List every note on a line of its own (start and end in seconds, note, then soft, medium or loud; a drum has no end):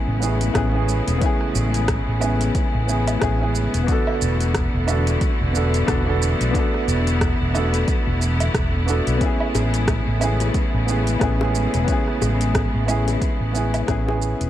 0.00 3.84 C#3 medium
0.00 3.84 G#3 medium
0.00 3.84 A3 medium
0.00 0.20 B3 medium
0.00 14.50 B3 medium
0.00 0.21 C#4 medium
0.00 0.22 E4 medium
0.00 14.50 E4 medium
0.00 0.24 G#4 loud
0.08 0.49 A1 loud
0.20 0.51 B3 medium
0.20 0.51 C#4 medium
0.20 0.52 E4 medium
0.20 shaker medium
0.24 0.53 G#4 medium
0.41 closed hi-hat medium
0.41 shaker soft
0.54 0.99 A1 medium
0.54 0.69 B3 loud
0.54 0.70 C#4 medium
0.54 0.70 E4 medium
0.54 0.71 G#4 loud
0.54 kick loud
0.54 cross-stick loud
0.54 closed hi-hat soft
0.54 shaker soft
0.72 0.80 B3 medium
0.72 0.81 C#4 medium
0.72 0.81 E4 medium
0.72 0.82 G#4 loud
0.89 shaker medium
1.08 1.18 E1 medium
1.08 closed hi-hat medium
1.08 shaker soft
1.18 2.16 B3 medium
1.18 2.18 C#4 medium
1.18 kick loud
1.18 closed hi-hat soft
1.22 2.19 E4 medium
1.22 2.20 G#4 loud
1.22 shaker soft
1.41 cross-stick soft
1.55 2.00 A1 loud
1.55 shaker medium
1.74 closed hi-hat medium
1.74 shaker soft
1.88 kick loud
1.88 cross-stick loud
1.88 closed hi-hat soft
1.88 shaker soft
2.08 2.49 A1 medium
2.20 2.84 B3 medium
2.20 2.85 C#4 medium
2.20 2.86 E4 medium
2.20 2.86 G#4 medium
2.20 low woodblock medium
2.20 shaker medium
2.41 closed hi-hat medium
2.41 shaker soft
2.55 kick loud
2.55 closed hi-hat soft
2.55 shaker soft
2.74 3.16 A1 loud
2.86 3.17 B3 medium
2.86 3.18 C#4 medium
2.86 3.18 E4 medium
2.86 shaker medium
2.90 3.19 G#4 medium
3.07 closed hi-hat medium
3.07 low woodblock medium
3.07 shaker soft
3.19 3.66 A1 medium
3.19 3.35 B3 medium
3.19 3.36 C#4 medium
3.19 3.36 E4 medium
3.19 kick loud
3.19 cross-stick loud
3.19 closed hi-hat soft
3.19 shaker soft
3.23 3.37 G#4 loud
3.39 3.47 B3 medium
3.39 3.47 C#4 medium
3.39 3.48 E4 medium
3.43 3.49 G#4 loud
3.55 shaker medium
3.74 3.85 E1 medium
3.74 closed hi-hat medium
3.74 shaker soft
3.84 4.83 B3 medium
3.84 4.84 D4 medium
3.88 9.17 D3 medium
3.88 9.18 E3 medium
3.88 14.50 A3 medium
3.88 4.85 F#4 medium
3.88 4.87 A4 loud
3.88 kick loud
3.88 closed hi-hat soft
3.88 shaker soft
4.07 low woodblock medium
4.21 4.66 E1 loud
4.21 shaker medium
4.41 closed hi-hat soft
4.41 shaker soft
4.55 kick loud
4.55 cross-stick loud
4.55 closed hi-hat soft
4.55 shaker soft
4.74 5.16 E1 loud
4.86 5.51 B3 medium
4.86 5.52 D4 medium
4.86 5.52 F#4 medium
4.86 5.53 A4 medium
4.86 low woodblock medium
4.86 shaker medium
5.07 closed hi-hat medium
5.07 shaker soft
5.21 kick loud
5.21 closed hi-hat soft
5.21 shaker soft
5.41 5.82 E1 loud
5.52 5.84 B3 medium
5.52 5.84 D4 medium
5.52 5.85 F#4 medium
5.52 shaker medium
5.57 5.86 A4 medium
5.74 closed hi-hat medium
5.74 shaker soft
5.86 6.33 E1 medium
5.86 6.02 B3 medium
5.86 6.02 D4 medium
5.86 6.03 F#4 medium
5.86 6.03 A4 loud
5.86 kick loud
5.86 cross-stick loud
5.86 closed hi-hat soft
5.86 shaker soft
6.05 6.13 B3 medium
6.05 6.14 D4 medium
6.05 6.14 F#4 medium
6.05 6.15 A4 loud
6.22 shaker medium
6.41 6.51 B1 medium
6.41 closed hi-hat medium
6.41 shaker soft
6.51 7.49 B3 medium
6.51 7.51 D4 medium
6.51 kick loud
6.55 7.52 F#4 medium
6.55 7.53 A4 loud
6.55 closed hi-hat soft
6.55 shaker soft
6.74 cross-stick soft
6.88 7.32 E1 loud
6.88 shaker medium
7.07 closed hi-hat medium
7.07 shaker soft
7.21 kick loud
7.21 cross-stick loud
7.21 closed hi-hat soft
7.21 shaker soft
7.40 7.82 E1 medium
7.53 8.18 B3 medium
7.53 8.18 D4 medium
7.53 8.19 F#4 medium
7.53 8.20 A4 medium
7.53 low woodblock medium
7.53 shaker medium
7.74 closed hi-hat medium
7.74 shaker soft
7.88 kick loud
7.88 closed hi-hat soft
7.88 shaker soft
8.07 8.49 E1 loud
8.22 shaker medium
8.40 closed hi-hat medium
8.40 low woodblock medium
8.40 shaker soft
8.54 8.99 E1 medium
8.54 kick loud
8.54 cross-stick medium
8.54 closed hi-hat soft
8.54 shaker soft
8.86 9.16 B3 medium
8.86 9.18 D4 medium
8.86 9.18 F#4 medium
8.86 9.19 A4 medium
8.86 shaker medium
9.07 9.18 B1 medium
9.07 closed hi-hat medium
9.07 shaker soft
9.17 14.50 C#3 medium
9.17 14.50 G#3 medium
9.17 10.16 B3 medium
9.17 10.17 C#4 medium
9.17 kick loud
9.17 closed hi-hat soft
9.21 10.19 E4 medium
9.21 10.20 G#4 loud
9.21 shaker soft
9.40 low woodblock medium
9.55 9.99 A1 medium
9.55 high bongo loud
9.55 shaker medium
9.74 closed hi-hat medium
9.74 shaker soft
9.88 kick loud
9.88 cross-stick loud
9.88 closed hi-hat soft
9.88 shaker soft
10.07 10.49 A1 medium
10.19 10.84 B3 medium
10.19 10.85 C#4 medium
10.19 10.86 E4 medium
10.19 low woodblock medium
10.19 shaker medium
10.24 10.86 G#4 medium
10.40 closed hi-hat medium
10.40 high bongo medium
10.40 shaker soft
10.54 kick loud
10.54 closed hi-hat soft
10.54 shaker soft
10.74 11.16 A1 loud
10.86 11.17 B3 medium
10.86 11.18 C#4 medium
10.86 11.18 E4 medium
10.86 11.19 G#4 medium
10.86 shaker medium
11.07 closed hi-hat soft
11.07 shaker soft
11.19 11.66 A1 medium
11.19 11.35 B3 loud
11.19 11.36 C#4 medium
11.19 11.36 E4 medium
11.19 11.37 G#4 loud
11.19 kick loud
11.19 cross-stick medium
11.19 closed hi-hat soft
11.19 shaker soft
11.39 11.47 B3 medium
11.39 11.47 C#4 medium
11.39 11.48 E4 medium
11.39 high bongo loud
11.43 11.49 G#4 loud
11.55 shaker medium
11.74 11.85 E1 medium
11.74 closed hi-hat medium
11.74 shaker soft
11.84 12.83 B3 medium
11.84 12.84 C#4 medium
11.84 kick loud
11.84 closed hi-hat soft
11.88 12.86 E4 medium
11.88 12.87 G#4 loud
11.88 shaker soft
12.08 cross-stick soft
12.22 12.66 A1 loud
12.22 high bongo medium
12.22 shaker medium
12.41 closed hi-hat medium
12.41 shaker soft
12.55 kick loud
12.55 cross-stick loud
12.55 closed hi-hat soft
12.55 shaker soft
12.74 13.16 A1 medium
12.86 13.51 B3 medium
12.86 13.51 C#4 medium
12.86 13.52 E4 medium
12.86 low woodblock medium
12.86 shaker medium
12.90 13.53 G#4 medium
13.08 closed hi-hat medium
13.08 high bongo medium
13.08 shaker soft
13.21 kick loud
13.21 closed hi-hat soft
13.21 shaker soft
13.41 13.82 A1 loud
13.53 13.84 B3 medium
13.53 13.84 C#4 medium
13.53 13.85 E4 medium
13.53 shaker medium
13.57 13.86 G#4 medium
13.74 closed hi-hat medium
13.74 low woodblock medium
13.74 shaker soft
13.87 14.33 A1 medium
13.87 14.02 B3 medium
13.87 14.03 C#4 medium
13.87 14.03 E4 medium
13.87 14.04 G#4 loud
13.87 kick loud
13.87 cross-stick medium
13.87 closed hi-hat soft
13.87 shaker soft
14.06 14.14 B3 medium
14.06 14.14 C#4 medium
14.06 14.15 E4 medium
14.06 14.16 G#4 loud
14.06 high bongo medium
14.22 shaker medium
14.41 14.50 E1 medium
14.41 closed hi-hat medium
14.41 shaker soft